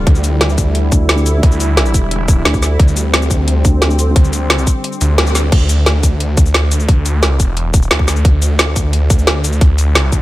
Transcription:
Already playing: analog synth pad D3 G3
0.07 detuned saw bass D2, analog synth pad E4, kick, closed hi-hat
0.15 cabasa
0.24 closed hi-hat, cabasa
0.41 snare, closed hi-hat
0.49 cabasa
0.58 kick, closed hi-hat, cabasa
0.75 closed hi-hat
0.92 wobble bass D2, kick, closed hi-hat, cabasa
1.09 snare, closed hi-hat
1.18 cabasa
1.26 closed hi-hat, cabasa
1.43 detuned saw bass D2, kick, closed hi-hat
1.52 cabasa
1.60 closed hi-hat, cabasa
1.77 snare, closed hi-hat
1.86 cabasa
1.94 detuned saw bass E1, kick, closed hi-hat, cabasa
2.11 closed hi-hat
2.28 kick, closed hi-hat, cabasa
2.45 wobble bass D2, snare, closed hi-hat
2.54 kick, cabasa
2.63 snare, closed hi-hat, cabasa
2.80 detuned saw bass D2, analog synth pad C4, kick, closed hi-hat
2.88 cabasa
2.97 closed hi-hat, cabasa
3.14 snare, closed hi-hat
3.22 cabasa
3.31 kick, closed hi-hat, cabasa
3.48 closed hi-hat
3.65 wobble bass D2, kick, closed hi-hat, cabasa
3.82 snare, closed hi-hat
3.90 cabasa
3.99 closed hi-hat, cabasa
4.16 detuned saw bass D2, kick, closed hi-hat
4.24 cabasa
4.33 closed hi-hat, cabasa
4.50 snare, closed hi-hat
4.59 cabasa
4.67 kick, closed hi-hat, cabasa
4.84 closed hi-hat
4.93 cabasa
5.01 detuned saw bass D2, closed hi-hat, cabasa
5.18 snare, closed hi-hat
5.27 cabasa
5.35 snare, closed hi-hat, cabasa
5.52 detuned saw bass D2, kick, closed hi-hat, crash
5.69 closed hi-hat, cabasa
5.86 snare, closed hi-hat, cabasa
6.03 kick, closed hi-hat, cabasa
6.20 closed hi-hat
6.37 detuned saw bass D2, kick, closed hi-hat, cabasa
6.46 cabasa
6.54 snare, closed hi-hat
6.71 closed hi-hat, cabasa
6.80 cabasa
6.88 detuned saw bass D2, kick, closed hi-hat
7.06 closed hi-hat, cabasa
7.23 snare, closed hi-hat, cabasa
7.40 detuned saw bass E1, kick, closed hi-hat, cabasa
7.57 closed hi-hat
7.74 kick, closed hi-hat, cabasa
7.82 cabasa
7.91 detuned saw bass D2, snare, closed hi-hat
7.99 kick
8.08 snare, closed hi-hat, cabasa
8.16 cabasa
8.25 detuned saw bass D2, kick, closed hi-hat
8.42 closed hi-hat, cabasa
8.59 snare, closed hi-hat, cabasa
8.76 kick, closed hi-hat, cabasa
8.93 closed hi-hat
9.10 detuned saw bass D2, kick, closed hi-hat, cabasa
9.19 cabasa
9.27 snare, closed hi-hat
9.44 closed hi-hat, cabasa
9.53 cabasa
9.61 detuned saw bass D2, kick, closed hi-hat
9.78 closed hi-hat, cabasa
9.95 snare, closed hi-hat, cabasa
10.12 detuned saw bass D2, kick, closed hi-hat, cabasa

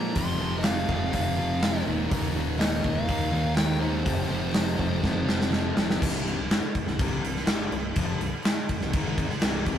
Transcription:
Already playing: fingered electric bass A#2, distorted electric guitar A#2 F3 A#3, lead electric guitar A#5
0.15 fingered electric bass F1, distorted electric guitar F2 C3 F3, lead electric guitar C6, kick, open hi-hat
0.39 fingered electric bass F1, distorted electric guitar F2 C3 F3
0.58 lead electric guitar D#5, clap
0.64 distorted electric guitar F2 C3 F3, lead electric guitar F5, snare, open hi-hat
0.88 fingered electric bass F1, distorted electric guitar F2 C3 F3, kick
1.12 fingered electric bass F1, distorted electric guitar F2 C3 F3, lead electric guitar F5, kick, open hi-hat
1.36 distorted electric guitar F2 C3 F3
1.61 distorted electric guitar F2 C3 F3, snare, clap, open hi-hat
1.85 fingered electric bass D#1, distorted electric guitar D#2 A#2 D#3
2.10 fingered electric bass D#1, distorted electric guitar D#2 A#2 D#3, kick, open hi-hat
2.35 distorted electric guitar D#2 A#2 D#3
2.59 distorted electric guitar D#2 A#2 D#3, lead electric guitar D#5, snare, clap, open hi-hat
2.83 fingered electric bass D#1, distorted electric guitar D#2 A#2 D#3, kick
2.93 lead electric guitar F5
3.08 distorted electric guitar D#2 A#2 D#3, fingered electric bass D#2, kick, open hi-hat
3.31 distorted electric guitar D#2 A#2 D#3
3.56 distorted electric guitar D#2 A#2 D#3, lead electric guitar G5, snare, clap, open hi-hat
3.79 distorted electric guitar D#2 A#2 D#3, lead electric guitar C5
4.04 fingered electric bass F1, distorted electric guitar F2 C3 F3, kick, open hi-hat
4.28 fingered electric bass F1, distorted electric guitar F2 C3 F3
4.53 distorted electric guitar F2 C3 F3, snare, clap, open hi-hat
4.79 fingered electric bass F1, distorted electric guitar F2 C3 F3, kick
5.03 fingered electric bass F1, distorted electric guitar F2 C3 F3, kick, snare
5.27 distorted electric guitar F2 C3 F3, snare
5.41 snare
5.51 distorted electric guitar F2 C3 F3, snare, clap
5.76 fingered electric bass F1, distorted electric guitar F2 C3 F3, snare
5.90 snare
6.01 fingered electric bass C1, distorted electric guitar C2 G2 C3, kick, crash
6.28 crash
6.39 fingered electric bass C1, distorted electric guitar C2 G2
6.50 fingered electric bass G1, distorted electric guitar G2 D3, snare, clap, crash
6.63 muted fingered electric bass stroke, muted distorted electric guitar stroke
6.74 muted distorted electric guitar stroke, muted fingered electric bass stroke, kick, crash
6.87 fingered electric bass C1, distorted electric guitar C2 G2, snare
6.99 fingered electric bass C1, distorted electric guitar C2 G2 C3, kick, crash
7.24 fingered electric bass C1, distorted electric guitar C2 G2, crash
7.36 snare
7.47 fingered electric bass G1, distorted electric guitar G2 D3 G3, snare, clap, crash
7.71 fingered electric bass C1, distorted electric guitar C2 G2, crash
7.96 fingered electric bass F1, distorted electric guitar F2 C3 F3, kick, crash
8.20 fingered electric bass C1, distorted electric guitar C2 G2, crash
8.44 snare, clap, crash
8.69 kick, crash
8.81 fingered electric bass C1, distorted electric guitar C2 G2, snare
8.93 fingered electric bass G#1, distorted electric guitar G#2 D#3 G#3, kick, crash
9.18 kick, crash
9.30 muted fingered electric bass stroke, muted distorted electric guitar stroke, snare
9.41 fingered electric bass C1, distorted electric guitar C2 G2 C3, snare, clap, crash
9.66 kick, crash

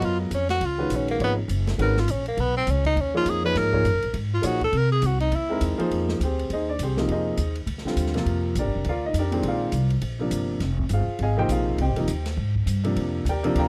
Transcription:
Already playing: upright piano F#3 B3 F4 A#4 D#5
0.01 upright bass F#2, tenor saxophone F4, ride
0.20 tenor saxophone G#3
0.31 upright bass F2, tenor saxophone C#4, hi-hat pedal, ride
0.49 tenor saxophone F#4, snare, ride
0.61 upright bass C#2, ride
0.65 tenor saxophone F4
0.78 upright piano D#3 G#3 C#4 F#4 B4
0.90 upright bass A#1, hi-hat pedal, ride
0.95 tenor saxophone C#4
1.08 tenor saxophone A#3, ride
1.20 upright bass G#1, upright piano F3 A#3 D#4 G#4 C#5, ride
1.24 tenor saxophone B3
1.48 upright bass F#1, hi-hat pedal, ride
1.67 snare, ride
1.78 upright bass G#1, upright piano D#3 G#3 C#4 F#4 B4, tenor saxophone A#4, ride
1.97 tenor saxophone F4, snare
2.08 upright bass A#1, tenor saxophone C#4, hi-hat pedal, ride
2.26 tenor saxophone A#3, ride
2.37 upright bass B1, tenor saxophone B3, ride
2.57 tenor saxophone C4
2.67 upright bass C#2, tenor saxophone C#4, hi-hat pedal, ride
2.85 tenor saxophone D#4, kick, ride
2.96 upright bass D#2, ride
3.00 tenor saxophone C#4
3.14 upright piano F3 A#3 D#4 G#4 C#5, tenor saxophone F4
3.25 upright bass F2, hi-hat pedal, ride
3.30 tenor saxophone G#4
3.44 upright piano F3 A#3 D#4 G#4 C#5, tenor saxophone B4
3.55 upright bass G#2, tenor saxophone A#4, snare, ride
3.72 upright piano F3 A#3 D#4 G#4 C#5, kick
3.84 upright bass F#2, hi-hat pedal, ride
3.94 upright bass C#2
4.02 upright bass A#1, ride
4.14 upright bass G#2, ride
4.34 tenor saxophone F4
4.42 upright bass A#2, upright piano F3 A#3 D#4 G#4 C#5, hi-hat pedal, ride
4.46 tenor saxophone F#4
4.61 tenor saxophone A4, kick, ride
4.72 upright bass C3, ride
4.77 tenor saxophone A#4
4.92 tenor saxophone G#4
5.02 upright bass C2, hi-hat pedal, ride
5.06 tenor saxophone F#4
5.20 tenor saxophone D#4, ride
5.31 upright bass D#2, ride
5.36 tenor saxophone E4
5.49 upright piano G#3 C4 D#4 E4 A#4
5.61 upright bass E2, hi-hat pedal, ride
5.78 upright piano F3 A#3 D#4 G#4 C5, muted upright bass stroke, ride
5.91 upright bass F2, ride
6.09 snare
6.20 upright bass D2, upright piano G4 C5, hi-hat pedal, ride
6.24 upright piano C4 G#4
6.39 ride
6.50 upright bass D#2, upright piano D#4 G#4 C5 D#5, ride
6.69 upright piano D4 D5
6.79 upright bass C2, hi-hat pedal, ride
6.83 upright piano C4 G4 G#4 C5
6.96 upright piano C3 F3 A#3 D#4, snare
7.08 upright bass F2, upright piano D#4 G#4 C5 D#5, ride
7.37 upright bass D#2, hi-hat pedal, ride
7.55 ride
7.66 upright bass D2, ride
7.78 snare
7.85 upright piano D3 G3 C4 F4, muted upright bass stroke, snare
7.96 upright bass D#2, hi-hat pedal, ride
8.07 snare
8.14 upright piano C3 F3 A#3 F4, snare, ride
8.26 upright bass F2, ride
8.55 upright bass A#1, upright piano D4 A#4 D5, hi-hat pedal, ride
8.60 upright piano G4
8.65 upright bass G1
8.75 upright bass F1
8.85 upright bass D2, ride
8.89 upright piano F4 A#4 D5 F5
9.06 upright piano D#4 D#5
9.14 upright bass F2, hi-hat pedal, ride
9.19 upright piano D4 G4 A#4 D5
9.31 upright piano A#2 D#3 G#3 C4, ride
9.43 upright bass A#1, ride
9.48 upright piano F4 A#4 D5 F5
9.72 upright bass C2, hi-hat pedal, ride
9.90 ride
10.02 upright bass A#1, ride
10.19 upright piano C3 F3 A#3 D4
10.31 upright bass G1, hi-hat pedal, ride
10.60 upright bass F1, snare, ride
10.79 kick
10.89 upright bass G1, upright piano F4, hi-hat pedal, ride
10.93 upright piano G#4 C5 F5
11.19 upright bass G#1, upright piano G#4 G#5, ride
11.23 upright piano D#5 F5
11.37 upright piano C3 F3 A#3 D#4 G4 C5 D#5 G5
11.49 upright bass A#1, upright piano F4 G#4 C5 F5, hi-hat pedal, ride
11.78 upright bass C2, upright piano C5 D#5 G5, ride
11.82 upright piano G4
11.88 upright bass G#1
11.96 upright bass F1, upright piano C3 F3 A#3 D#4, ride
12.07 upright bass D#2, hi-hat pedal, ride
12.26 snare, ride
12.37 upright bass G#2
12.55 kick
12.66 upright bass G2, hi-hat pedal, ride
12.84 upright piano C3 F3 A#3 D4, ride
12.96 upright bass F2, ride
13.25 upright bass D#2, hi-hat pedal, ride
13.29 upright piano G4 A#4 D5 G5
13.43 upright piano C3 F3 A#3 D4, ride
13.55 upright bass D2, upright piano A#4 F5 G5 A#5, ride

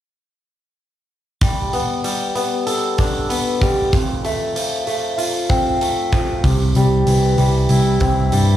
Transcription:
1.41 steel-string acoustic guitar G3, kick, open hi-hat
1.73 steel-string acoustic guitar B3, open hi-hat
2.04 steel-string acoustic guitar G3, open hi-hat
2.35 steel-string acoustic guitar B3, open hi-hat
2.67 steel-string acoustic guitar A4, open hi-hat
2.98 steel-string acoustic guitar D4, kick, open hi-hat
3.30 steel-string acoustic guitar B3, open hi-hat
3.61 steel-string acoustic guitar G3, kick, open hi-hat
3.93 steel-string acoustic guitar F2, kick, open hi-hat
4.25 steel-string acoustic guitar A3, open hi-hat
4.56 steel-string acoustic guitar F3, open hi-hat
4.87 steel-string acoustic guitar A3, open hi-hat
5.18 steel-string acoustic guitar F4, open hi-hat
5.49 steel-string acoustic guitar C4, kick, open hi-hat
5.81 steel-string acoustic guitar A3, open hi-hat
6.12 steel-string acoustic guitar F3, kick, open hi-hat
6.44 picked electric bass C2, steel-string acoustic guitar C3, kick, open hi-hat
6.75 picked electric bass C2, steel-string acoustic guitar G3, open hi-hat
7.07 picked electric bass C2, steel-string acoustic guitar E3, open hi-hat
7.38 picked electric bass C2, steel-string acoustic guitar G3, open hi-hat
7.69 picked electric bass C2, steel-string acoustic guitar E4, open hi-hat
8.00 picked electric bass C2, steel-string acoustic guitar C4, kick, open hi-hat
8.32 picked electric bass G2, steel-string acoustic guitar G3, open hi-hat

